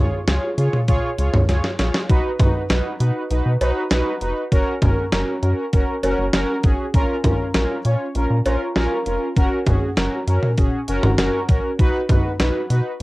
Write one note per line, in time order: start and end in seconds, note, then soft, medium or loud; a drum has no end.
0.00 0.20 F4 medium
0.00 0.20 G#4 medium
0.00 0.20 C#5 medium
0.28 0.39 C#2 loud
0.28 0.50 F4 medium
0.28 0.50 G#4 medium
0.28 0.50 C#5 loud
0.28 snare loud
0.28 closed hi-hat medium
0.58 0.69 C#3 loud
0.58 0.80 F4 medium
0.58 0.80 G#4 medium
0.58 0.80 C#5 loud
0.58 closed hi-hat medium
0.73 mid tom medium
0.88 1.00 C#2 loud
0.88 1.10 F4 loud
0.88 1.10 G#4 loud
0.88 1.10 C#5 loud
0.88 kick medium
0.88 closed hi-hat medium
1.18 1.30 C#2 loud
1.18 1.41 F4 medium
1.18 1.41 G#4 medium
1.18 1.41 C#5 loud
1.18 closed hi-hat medium
1.34 1.45 C#2 loud
1.34 mid tom loud
1.49 1.60 C#2 loud
1.49 1.71 F4 medium
1.49 1.71 G#4 medium
1.49 1.71 C#5 loud
1.49 snare medium
1.49 closed hi-hat medium
1.64 snare medium
1.79 1.90 A#1 medium
1.79 2.01 F4 medium
1.79 2.01 G#4 medium
1.79 2.01 C#5 loud
1.79 snare medium
1.79 closed hi-hat medium
1.94 snare medium
2.09 2.21 B1 loud
2.09 2.32 D#4 loud
2.09 2.32 F#4 loud
2.09 2.32 B4 loud
2.09 kick loud
2.09 closed hi-hat medium
2.39 2.51 B1 loud
2.39 2.62 D#4 medium
2.39 2.62 F#4 medium
2.39 2.62 B4 loud
2.39 kick medium
2.39 closed hi-hat medium
2.39 mid tom medium
2.70 2.81 B1 loud
2.70 2.92 D#4 medium
2.70 2.92 F#4 medium
2.70 2.92 B4 loud
2.70 snare loud
2.70 closed hi-hat medium
3.00 3.11 B2 loud
3.00 3.23 D#4 medium
3.00 3.23 F#4 medium
3.00 3.23 B4 loud
3.00 closed hi-hat medium
3.30 3.42 B1 loud
3.30 3.53 D#4 medium
3.30 3.53 F#4 medium
3.30 3.53 B4 loud
3.30 closed hi-hat medium
3.46 3.57 B2 medium
3.61 3.72 B1 loud
3.61 3.83 D#4 loud
3.61 3.83 F#4 loud
3.61 3.83 B4 loud
3.61 closed hi-hat medium
3.61 cowbell medium
3.91 4.02 B1 loud
3.91 4.13 D#4 loud
3.91 4.13 F#4 loud
3.91 4.13 B4 loud
3.91 snare loud
3.91 closed hi-hat medium
4.21 4.33 F1 medium
4.21 4.44 D#4 medium
4.21 4.44 F#4 medium
4.21 4.44 B4 loud
4.21 closed hi-hat medium
4.52 4.63 F#1 loud
4.52 4.74 C#4 loud
4.52 4.74 F#4 loud
4.52 4.74 A#4 loud
4.52 kick loud
4.52 closed hi-hat medium
4.82 4.93 F#1 loud
4.82 5.04 C#4 medium
4.82 5.04 F#4 medium
4.82 5.04 A#4 medium
4.82 kick medium
4.82 closed hi-hat medium
4.82 mid tom medium
5.12 5.24 F#1 loud
5.12 5.35 C#4 medium
5.12 5.35 F#4 medium
5.12 5.35 A#4 loud
5.12 snare loud
5.12 closed hi-hat medium
5.43 5.54 F#2 loud
5.43 5.65 C#4 medium
5.43 5.65 F#4 medium
5.43 5.65 A#4 loud
5.43 closed hi-hat medium
5.73 5.84 F#1 loud
5.73 5.95 C#4 medium
5.73 5.95 F#4 medium
5.73 5.95 A#4 loud
5.73 kick medium
5.73 closed hi-hat medium
6.03 6.14 F#1 loud
6.03 6.25 C#4 loud
6.03 6.25 F#4 loud
6.03 6.26 A#4 loud
6.03 closed hi-hat medium
6.03 cowbell medium
6.18 6.30 F#1 loud
6.33 6.45 F#1 loud
6.33 6.56 C#4 loud
6.33 6.56 F#4 loud
6.33 6.56 A#4 loud
6.33 snare loud
6.33 closed hi-hat medium
6.64 6.75 G#1 loud
6.64 6.86 C#4 medium
6.64 6.86 F#4 medium
6.64 6.86 G#4 loud
6.64 kick loud
6.64 closed hi-hat medium
6.94 7.05 A#1 loud
6.94 7.17 C#4 loud
6.94 7.16 F4 loud
6.94 7.17 A#4 loud
6.94 kick loud
6.94 closed hi-hat medium
7.24 7.36 A#1 loud
7.24 7.47 C#4 medium
7.24 7.47 F4 medium
7.24 7.47 A#4 loud
7.24 kick medium
7.24 closed hi-hat medium
7.24 mid tom medium
7.54 7.66 A#1 loud
7.54 7.77 C#4 medium
7.54 7.77 F4 medium
7.54 7.77 A#4 loud
7.54 snare loud
7.54 closed hi-hat medium
7.85 7.96 A#2 loud
7.85 8.07 C#4 medium
7.85 8.08 F4 medium
7.85 8.07 C#5 loud
7.85 closed hi-hat medium
8.15 8.27 A#1 loud
8.15 8.38 C#4 medium
8.15 8.38 F4 medium
8.15 8.38 A#4 loud
8.15 closed hi-hat medium
8.30 8.42 A#2 medium
8.46 8.57 A#1 loud
8.46 8.68 C#4 loud
8.46 8.68 F4 loud
8.46 8.68 A#4 loud
8.46 closed hi-hat medium
8.46 cowbell medium
8.76 8.87 A#1 loud
8.76 8.98 C#4 loud
8.76 8.98 F4 loud
8.76 8.98 A#4 loud
8.76 snare loud
8.76 closed hi-hat medium
9.06 9.17 F1 medium
9.06 9.29 C#4 medium
9.06 9.29 F4 medium
9.06 9.29 A#4 loud
9.06 closed hi-hat medium
9.37 9.48 F#1 loud
9.37 9.59 C#4 loud
9.37 9.59 F#4 loud
9.37 9.59 A#4 loud
9.37 kick loud
9.37 closed hi-hat medium
9.67 9.78 F#1 loud
9.67 9.89 C#4 medium
9.67 9.89 F#4 medium
9.67 9.89 G#4 medium
9.67 kick medium
9.67 closed hi-hat medium
9.67 mid tom medium
9.97 10.08 F#1 loud
9.97 10.20 C#4 medium
9.97 10.20 F#4 medium
9.97 10.20 A#4 loud
9.97 snare loud
9.97 closed hi-hat medium
10.27 10.39 F#2 loud
10.27 10.50 C#4 medium
10.27 10.50 F#4 medium
10.27 10.50 A#4 loud
10.27 closed hi-hat medium
10.43 mid tom medium
10.58 10.69 F#1 loud
10.58 10.80 C#4 medium
10.58 10.80 F#4 medium
10.58 10.80 G#4 loud
10.58 kick medium
10.58 closed hi-hat medium
10.88 11.00 F#1 loud
10.88 11.10 C#4 loud
10.88 11.10 F#4 loud
10.88 11.11 A#4 loud
10.88 closed hi-hat medium
11.03 11.15 F#1 loud
11.03 mid tom loud
11.18 11.30 F#1 loud
11.18 11.41 C#4 loud
11.18 11.41 F#4 loud
11.18 11.41 A#4 loud
11.18 snare loud
11.18 closed hi-hat medium
11.49 11.60 A#1 loud
11.49 11.71 C#4 medium
11.49 11.71 F#4 medium
11.49 11.71 A#4 loud
11.49 kick loud
11.49 closed hi-hat medium
11.79 11.90 B1 loud
11.79 12.02 D#4 loud
11.79 12.01 F#4 loud
11.79 12.02 B4 loud
11.79 kick loud
11.79 closed hi-hat medium
12.09 12.21 B1 loud
12.09 12.32 D#4 medium
12.09 12.32 F#4 medium
12.09 12.32 B4 medium
12.09 kick medium
12.09 closed hi-hat medium
12.09 mid tom medium
12.40 12.51 B1 loud
12.40 12.62 D#4 medium
12.40 12.62 F#4 medium
12.40 12.62 B4 loud
12.40 snare loud
12.40 closed hi-hat medium
12.70 12.81 B2 loud
12.70 12.92 D#4 medium
12.70 12.92 F#4 medium
12.70 12.92 B4 medium
12.70 closed hi-hat medium